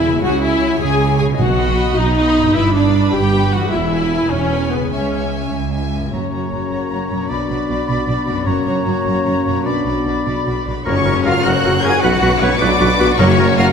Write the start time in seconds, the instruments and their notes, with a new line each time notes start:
Already playing: double bass section E1, cello section E2, harp E3 B3 E4 B4, viola section E4, violin section B4 E5 G#5
0.05 harp C#3
0.10 harp G#3
0.14 harp E4
0.19 viola section F#4, harp C#5
0.23 double bass section C#2, cello section C#3, violin section C#5 F#5 G#5
0.41 viola section E4, violin section C#5 E5 G#5
0.80 double bass section C#2, cello section C#3, viola section G#4, violin section G#5
0.99 violin section C#5 G#5
1.18 harp B2, viola section G#4, violin section G#5
1.25 harp B3
1.30 harp D#4
1.34 harp D#5, violin section F#5
1.38 double bass section B1, timpani B2, cello section B2, viola section F#4
1.58 violin section D#5 B5
1.95 double bass section B1, cello section B2, viola section D#4, violin section D#5
2.15 violin section D#5 B5
2.37 harp G2
2.42 harp B3
2.47 harp G4
2.51 double bass section G1, viola section E4, harp B4, violin section B4 E5
2.55 cello section G2, violin section B5
2.73 viola section D4, violin section B4 D5 B5
3.13 double bass section G1, cello section G2, viola section G4, violin section G5
3.33 violin section B4 B5
3.52 harp E3, viola section F#4, violin section F#5
3.58 harp E4
3.63 harp G#4
3.67 harp B4, violin section E5
3.71 double bass section E1, cello section E2, viola section E4
3.90 violin section B4 G#5
4.30 double bass section E1, cello section E2, viola section C#4, violin section C#5
4.52 violin section B4 G#5
4.71 harp C#3, viola section B3, violin section B4
4.79 harp E4
4.83 harp G#4
4.88 double bass section C#2, viola section C#4, harp C#5, violin section C#5 E5
4.92 cello section C#2, violin section G#5
5.13 violin section E5 G#5
5.52 double bass section C#2, cello section C#2
5.73 violin section E5 G#5
5.95 harp F#2
5.99 harp C#4
6.04 harp F#4
6.08 harp A#4, oboe C#5, flute section A#5, violin section A#5
6.12 double bass section F#1, timpani F#2, cello section F#2, french horn section A#3 C#4, viola section F#4, clarinet F#4, violin section C#5
6.32 double bass section F#1, cello section F#2, viola section F#4, violin section C#5 A#5
6.51 double bass section F#1, cello section F#2, viola section F#4, violin section C#5 A#5
6.70 double bass section F#1, cello section F#2, viola section F#4, violin section C#5 A#5
6.90 double bass section F#1, cello section F#2, viola section F#4, violin section C#5 A#5
7.08 double bass section F#1, cello section F#2, viola section F#4, violin section A#5
7.12 harp B2, violin section C#5
7.18 harp D4
7.22 harp F#4
7.27 double bass section B1, cello section B2, harp B4, oboe D5, violin section D5 B5, flute section B5
7.31 french horn section B3 D4, viola section F#4
7.49 double bass section B1, cello section B2, viola section F#4, violin section D5 B5
7.68 double bass section B1, cello section B2, viola section F#4, violin section D5 B5
7.88 double bass section B1, cello section B2, viola section F#4, violin section D5 B5
8.07 double bass section B1, cello section B2, viola section F#4, violin section D5 B5
8.27 double bass section B1, harp F#2, cello section B2, viola section F#4, violin section D5 B5
8.33 harp C#4
8.38 harp F#4
8.43 cello section F#2, french horn section C#4, viola section F#4, harp A#4, violin section C#5 A#5, oboe C#5, flute section A#5
8.47 double bass section F#1, french horn section A#3, clarinet F#4
8.64 double bass section F#1, cello section F#2, viola section F#4, violin section C#5 A#5
8.85 double bass section F#1, cello section F#2, viola section F#4, violin section C#5 A#5
9.05 double bass section F#1, cello section F#2, viola section F#4, violin section C#5 A#5
9.25 double bass section F#1, cello section F#2, viola section F#4, violin section C#5 A#5
9.45 double bass section F#1, cello section F#2, harp B2, viola section F#4, violin section C#5 A#5
9.53 harp D4
9.57 harp F#4
9.62 double bass section B1, french horn section B3, viola section F#4, harp B4, oboe D5, flute section B5
9.66 cello section B2, french horn section D4, violin section D5 B5
9.85 double bass section B1, cello section B2, viola section F#4, violin section D5 B5
10.05 double bass section B1, cello section B2, viola section F#4, violin section D5 B5
10.26 double bass section B1, cello section B2, viola section F#4, violin section D5 B5
10.46 double bass section B1, cello section B2, viola section F#4, violin section D5 B5
10.66 double bass section B1, cello section B2, viola section F#4, violin section D5 B5
10.85 tuba F#1, double bass section F#1, harp F#2, viola section F#3 F#4, cello section C#4, clarinet F#4, oboe A#4, violin section A#4 C#5 C#6, flute section C#5, tam-tam
10.97 harp C#3
11.05 double bass section F#1, tuba F#1, viola section F#3, harp C#4, clarinet F#4, oboe A#4
11.16 harp F#4
11.25 double bass section F#1, tuba F#1, viola section F#3, french horn section A#3 F#4, cello section F4, clarinet F#4, oboe A#4, harp A#4, flute section F5, violin section F6
11.36 harp C#5
11.45 tuba F#1, double bass section F#1, viola section F#3, cello section F#4, clarinet F#4, oboe A#4, flute section F#5, harp F#5, violin section F#6
11.56 harp A#5
11.64 double bass section F#1, tuba F#1, viola section F#3, clarinet F#4, oboe A#4, harp F#5
11.75 harp C#5
11.83 tuba F#1, double bass section F#1, viola section F#3, french horn section A#3 F#4, harp F#4, clarinet F#4, cello section G#4, oboe A#4, flute section G#5, violin section G#6
11.95 harp C#4
12.02 double bass section B1, tuba B1, harp B2, viola section F#3, cello section F#4, violin section F#4 B4 F#6, clarinet F#4, oboe B4, flute section F#5
12.14 harp F#3
12.22 double bass section B1, tuba B1, viola section F#3, harp B3, clarinet F#4, oboe B4
12.32 harp F#4
12.42 double bass section B1, tuba B1, viola section F#3, french horn section B3 F#4, cello section C#4, clarinet F#4, harp B4, oboe B4, flute section C#5, violin section C#6
12.51 harp F#4
12.60 double bass section B1, tuba B1, viola section F#3, cello section D4, clarinet F#4, oboe B4, flute section D5, harp F#5, violin section D6
12.71 harp B5
12.80 double bass section B1, tuba B1, viola section F#3, clarinet F#4, oboe B4, harp F#5
12.91 harp B4
12.98 double bass section B1, tuba B1, viola section F#3, french horn section B3 F#4, clarinet F#4, harp F#4, oboe B4
13.09 harp B3
13.18 double bass section F#1, tuba F#1, harp F#2, timpani F#2, viola section F#3 F#4, cello section C#4, clarinet F#4, oboe A#4, violin section A#4 C#6, flute section C#5
13.29 harp C#3
13.38 double bass section F#1, tuba F#1, viola section F#3, harp A#3, clarinet F#4, oboe A#4
13.49 harp F#4
13.57 double bass section F#1, tuba F#1, viola section F#3, french horn section A#3 F#4, cello section F4, clarinet F#4, oboe A#4, harp C#5, flute section F5, violin section F6
13.68 harp A#4